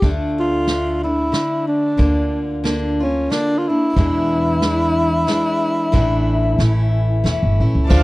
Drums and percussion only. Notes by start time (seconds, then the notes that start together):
0.02 kick, closed hi-hat
0.67 snare, closed hi-hat
1.33 snare, closed hi-hat
1.99 kick, closed hi-hat
2.65 snare, closed hi-hat
3.31 snare, closed hi-hat
3.96 kick, closed hi-hat
4.62 snare, closed hi-hat
5.28 snare, closed hi-hat
5.93 kick, closed hi-hat
6.60 snare, closed hi-hat
7.26 snare, closed hi-hat
7.91 kick, crash